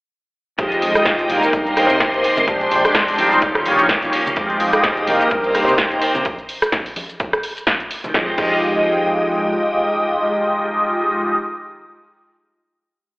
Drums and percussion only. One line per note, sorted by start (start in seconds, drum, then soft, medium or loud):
0.59 kick loud
0.59 closed hi-hat medium
0.59 maracas medium
0.72 closed hi-hat soft
0.72 maracas soft
0.82 open hi-hat loud
0.95 cross-stick medium
0.95 closed hi-hat soft
0.95 maracas medium
1.06 kick loud
1.06 snare loud
1.06 closed hi-hat medium
1.06 maracas medium
1.19 closed hi-hat soft
1.19 maracas soft
1.30 open hi-hat loud
1.30 high conga medium
1.43 closed hi-hat soft
1.43 maracas medium
1.53 kick loud
1.53 closed hi-hat medium
1.53 maracas medium
1.67 closed hi-hat soft
1.67 maracas soft
1.77 cross-stick medium
1.77 open hi-hat loud
1.90 closed hi-hat soft
1.90 maracas medium
2.00 kick loud
2.00 snare loud
2.00 closed hi-hat medium
2.00 maracas medium
2.14 closed hi-hat soft
2.14 maracas soft
2.24 open hi-hat loud
2.37 closed hi-hat soft
2.37 high conga medium
2.37 low conga medium
2.37 maracas medium
2.48 kick loud
2.48 closed hi-hat medium
2.48 maracas medium
2.61 closed hi-hat soft
2.61 maracas soft
2.71 open hi-hat loud
2.85 cross-stick medium
2.85 closed hi-hat soft
2.85 maracas medium
2.95 kick loud
2.95 snare loud
2.95 closed hi-hat medium
2.95 maracas medium
3.08 open hi-hat medium
3.08 maracas soft
3.18 open hi-hat loud
3.18 high conga medium
3.32 closed hi-hat soft
3.32 maracas medium
3.42 kick loud
3.42 closed hi-hat medium
3.42 maracas medium
3.55 cross-stick medium
3.55 closed hi-hat soft
3.55 maracas soft
3.66 open hi-hat loud
3.79 closed hi-hat soft
3.79 maracas medium
3.89 kick loud
3.89 snare loud
3.89 closed hi-hat medium
3.89 maracas medium
4.02 closed hi-hat soft
4.02 maracas soft
4.13 open hi-hat loud
4.26 closed hi-hat soft
4.26 high conga medium
4.26 low conga medium
4.26 maracas medium
4.36 kick loud
4.36 closed hi-hat medium
4.36 maracas medium
4.50 closed hi-hat soft
4.50 maracas soft
4.60 open hi-hat loud
4.73 cross-stick medium
4.73 closed hi-hat soft
4.73 maracas medium
4.84 kick loud
4.84 snare loud
4.84 closed hi-hat medium
4.84 maracas medium
4.97 closed hi-hat soft
4.97 maracas soft
5.07 open hi-hat loud
5.07 high conga loud
5.21 closed hi-hat soft
5.21 maracas medium
5.30 kick loud
5.30 closed hi-hat medium
5.30 maracas medium
5.44 closed hi-hat soft
5.44 maracas soft
5.55 cross-stick medium
5.55 open hi-hat loud
5.68 closed hi-hat soft
5.68 maracas medium
5.78 kick loud
5.78 snare loud
5.78 closed hi-hat medium
5.78 maracas medium
5.91 closed hi-hat soft
5.91 maracas soft
6.02 open hi-hat loud
6.14 closed hi-hat soft
6.14 high conga medium
6.14 low conga medium
6.14 maracas medium
6.25 kick loud
6.25 closed hi-hat medium
6.25 maracas medium
6.39 closed hi-hat soft
6.39 maracas soft
6.49 open hi-hat loud
6.62 cross-stick medium
6.62 closed hi-hat soft
6.62 maracas medium
6.72 kick loud
6.72 snare loud
6.72 closed hi-hat medium
6.72 maracas medium
6.86 open hi-hat medium
6.86 maracas soft
6.96 open hi-hat loud
6.96 high conga loud
7.09 closed hi-hat soft
7.09 maracas medium
7.20 kick loud
7.20 closed hi-hat medium
7.20 maracas medium
7.33 cross-stick medium
7.33 closed hi-hat soft
7.33 maracas soft
7.43 open hi-hat loud
7.57 closed hi-hat soft
7.57 maracas medium
7.67 kick loud
7.67 snare loud
7.67 closed hi-hat medium
7.67 maracas medium
7.80 closed hi-hat soft
7.80 maracas soft
7.91 open hi-hat loud
8.04 closed hi-hat soft
8.04 high conga medium
8.04 low conga medium
8.04 maracas medium
8.14 kick loud
8.14 snare medium
8.38 kick loud
8.38 crash medium